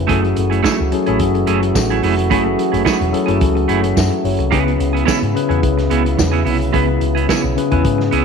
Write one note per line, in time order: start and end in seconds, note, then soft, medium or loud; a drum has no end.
0.00 0.12 C#3 medium
0.00 0.09 C#4 medium
0.00 0.12 D4 medium
0.00 0.10 E4 medium
0.00 0.10 G#4 medium
0.00 0.12 B4 loud
0.07 0.33 F#1 loud
0.07 4.48 E3 medium
0.07 0.73 F#3 medium
0.07 8.25 F#3 medium
0.07 0.23 A3 medium
0.07 4.48 A3 medium
0.07 0.73 C#4 medium
0.07 0.23 E4 medium
0.07 0.73 E4 medium
0.07 4.48 F#4 medium
0.07 0.22 G#4 medium
0.07 0.73 G#4 medium
0.07 0.74 A4 medium
0.07 kick loud
0.07 closed hi-hat medium
0.23 muted clean electric guitar stroke soft
0.23 closed hi-hat soft
0.36 0.61 F#1 loud
0.36 muted clean electric guitar stroke soft
0.36 closed hi-hat medium
0.50 0.61 A3 soft
0.50 0.62 E4 soft
0.50 0.61 G#4 medium
0.50 closed hi-hat soft
0.63 0.78 A3 medium
0.63 0.78 E4 medium
0.63 0.76 G#4 medium
0.63 kick loud
0.63 snare loud
0.63 tambourine medium
0.78 0.91 C#2 medium
0.78 muted clean electric guitar stroke soft
0.92 1.04 F#3 medium
0.92 1.04 C#4 medium
0.92 1.04 E4 medium
0.92 1.04 G#4 medium
0.92 1.04 A4 medium
0.92 muted clean electric guitar stroke soft
0.92 closed hi-hat medium
1.06 1.19 A1 medium
1.06 1.91 F#3 medium
1.06 1.18 A3 medium
1.06 1.91 C#4 medium
1.06 1.17 E4 soft
1.06 1.91 E4 medium
1.06 1.17 G#4 medium
1.06 1.92 G#4 medium
1.06 1.92 A4 medium
1.06 closed hi-hat soft
1.19 1.43 F#1 medium
1.19 kick loud
1.19 closed hi-hat medium
1.35 muted clean electric guitar stroke soft
1.35 closed hi-hat soft
1.47 1.71 F#1 medium
1.47 1.62 A3 medium
1.47 1.62 E4 medium
1.47 1.62 G#4 medium
1.47 closed hi-hat medium
1.63 muted clean electric guitar stroke medium
1.63 closed hi-hat medium
1.75 1.99 A1 loud
1.75 muted clean electric guitar stroke soft
1.75 kick loud
1.75 snare loud
1.75 tambourine loud
1.90 2.02 A3 medium
1.90 2.03 E4 medium
1.90 2.03 G#4 medium
1.90 closed hi-hat soft
2.03 2.31 F1 medium
2.03 2.14 A3 medium
2.03 2.15 E4 medium
2.03 2.15 G#4 medium
2.03 open hi-hat medium
2.18 muted clean electric guitar stroke soft
2.18 closed hi-hat soft
2.30 2.54 F#1 medium
2.30 2.94 F#3 medium
2.30 2.45 A3 medium
2.30 2.95 C#4 medium
2.30 2.44 E4 medium
2.30 2.95 E4 medium
2.30 2.43 G#4 medium
2.30 2.95 G#4 medium
2.30 2.95 A4 loud
2.30 kick loud
2.30 closed hi-hat medium
2.44 muted clean electric guitar stroke soft
2.58 muted clean electric guitar stroke soft
2.58 closed hi-hat medium
2.72 2.84 F#1 loud
2.72 2.83 A3 medium
2.72 2.83 E4 medium
2.72 2.83 G#4 soft
2.72 closed hi-hat soft
2.85 3.00 A3 medium
2.85 2.99 E4 medium
2.85 2.98 G#4 loud
2.85 kick loud
2.85 snare loud
2.85 tambourine medium
2.99 3.11 E1 loud
2.99 muted clean electric guitar stroke soft
2.99 closed hi-hat soft
3.11 3.24 F#3 medium
3.11 3.25 C#4 medium
3.11 3.24 E4 medium
3.11 3.25 G#4 medium
3.11 3.25 A4 medium
3.11 muted clean electric guitar stroke soft
3.11 closed hi-hat medium
3.26 3.39 F#1 medium
3.26 4.12 F#3 medium
3.26 3.38 A3 soft
3.26 4.12 C#4 medium
3.26 3.38 E4 medium
3.26 4.12 E4 medium
3.26 3.37 G#4 medium
3.26 4.12 G#4 medium
3.26 4.13 A4 medium
3.26 closed hi-hat soft
3.41 3.65 C#2 medium
3.41 kick loud
3.41 closed hi-hat medium
3.55 muted clean electric guitar stroke soft
3.55 closed hi-hat soft
3.68 3.92 F#1 medium
3.68 3.83 A3 medium
3.68 3.83 E4 medium
3.68 3.82 G#4 medium
3.68 3.95 F#5 medium
3.68 closed hi-hat medium
3.83 muted clean electric guitar stroke medium
3.83 closed hi-hat medium
3.96 4.09 F#2 medium
3.96 4.23 E5 medium
3.96 muted clean electric guitar stroke soft
3.96 kick loud
3.96 snare loud
3.96 tambourine medium
4.11 muted clean electric guitar stroke soft
4.11 closed hi-hat soft
4.24 4.37 F#1 medium
4.24 4.51 C#5 medium
4.24 open hi-hat medium
4.39 4.50 C2 medium
4.39 muted clean electric guitar stroke soft
4.39 closed hi-hat soft
4.51 4.76 C#2 loud
4.51 5.16 C#3 medium
4.51 8.25 C#3 medium
4.51 4.72 B3 medium
4.51 8.25 B3 medium
4.51 5.16 C#4 medium
4.51 4.59 D4 medium
4.51 4.66 E4 medium
4.51 8.25 E4 medium
4.51 4.65 G#4 loud
4.51 5.16 G#4 medium
4.51 5.16 B4 loud
4.51 kick loud
4.51 closed hi-hat medium
4.59 5.19 E4 medium
4.66 muted clean electric guitar stroke soft
4.66 closed hi-hat soft
4.78 5.03 C#2 loud
4.78 muted clean electric guitar stroke soft
4.78 closed hi-hat medium
4.93 5.04 B3 medium
4.93 5.04 E4 medium
4.93 5.04 G#4 medium
4.93 closed hi-hat soft
5.05 5.21 B3 medium
5.05 5.20 E4 medium
5.05 5.19 G#4 loud
5.05 kick loud
5.05 snare loud
5.05 tambourine medium
5.20 5.33 G#2 medium
5.20 muted clean electric guitar stroke soft
5.20 closed hi-hat soft
5.34 5.46 C#3 medium
5.34 5.46 C#4 medium
5.34 5.46 E4 medium
5.34 5.47 G#4 medium
5.34 5.47 B4 medium
5.34 muted clean electric guitar stroke soft
5.34 closed hi-hat medium
5.49 5.61 E2 loud
5.49 6.34 C#3 medium
5.49 5.60 B3 medium
5.49 6.34 C#4 medium
5.49 5.60 E4 soft
5.49 6.34 E4 medium
5.49 5.60 G#4 medium
5.49 6.34 G#4 medium
5.49 6.34 B4 medium
5.49 closed hi-hat soft
5.63 5.86 C#2 loud
5.63 kick loud
5.63 closed hi-hat medium
5.78 muted clean electric guitar stroke soft
5.78 snare soft
5.78 closed hi-hat soft
5.90 6.14 C#2 medium
5.90 6.05 B3 medium
5.90 6.04 E4 medium
5.90 6.04 G#4 medium
5.90 closed hi-hat medium
6.06 closed hi-hat medium
6.17 6.42 E2 medium
6.17 muted clean electric guitar stroke soft
6.17 kick loud
6.17 snare loud
6.17 tambourine loud
6.32 6.44 B3 medium
6.32 6.44 E4 medium
6.32 6.45 G#4 medium
6.32 closed hi-hat soft
6.45 6.69 C2 medium
6.45 6.57 B3 medium
6.45 6.57 E4 medium
6.45 6.57 G#4 medium
6.45 open hi-hat medium
6.59 muted clean electric guitar stroke soft
6.59 closed hi-hat soft
6.73 6.97 C#2 loud
6.73 7.37 C#3 loud
6.73 6.88 B3 medium
6.73 7.38 C#4 medium
6.73 6.87 E4 medium
6.73 7.38 E4 medium
6.73 6.86 G#4 medium
6.73 7.38 G#4 medium
6.73 7.38 B4 medium
6.73 kick loud
6.73 closed hi-hat medium
6.88 muted clean electric guitar stroke soft
7.01 7.24 C#2 loud
7.01 muted clean electric guitar stroke soft
7.01 closed hi-hat medium
7.15 7.26 B3 soft
7.15 7.26 E4 medium
7.15 7.26 G#4 medium
7.15 closed hi-hat soft
7.29 7.44 B3 medium
7.29 7.44 E4 medium
7.29 7.43 G#4 medium
7.29 kick loud
7.29 snare loud
7.29 tambourine medium
7.44 7.55 B1 medium
7.44 muted clean electric guitar stroke soft
7.56 7.68 C#3 medium
7.56 7.68 C#4 medium
7.56 7.69 E4 medium
7.56 7.69 G#4 medium
7.56 7.69 B4 medium
7.56 muted clean electric guitar stroke soft
7.56 closed hi-hat medium
7.71 7.83 E2 medium
7.71 8.25 C#3 medium
7.71 7.83 B3 medium
7.71 8.25 C#4 medium
7.71 8.25 E4 medium
7.71 7.82 E4 medium
7.71 7.82 G#4 medium
7.71 8.25 G#4 medium
7.71 8.25 B4 medium
7.71 kick medium
7.71 closed hi-hat soft
7.85 8.08 G#2 loud
7.85 kick loud
7.85 closed hi-hat medium
7.98 muted clean electric guitar stroke soft
7.98 snare soft
8.11 8.25 C#2 medium
8.11 8.25 B3 medium
8.11 8.25 E4 medium
8.11 8.25 G#4 loud
8.11 closed hi-hat medium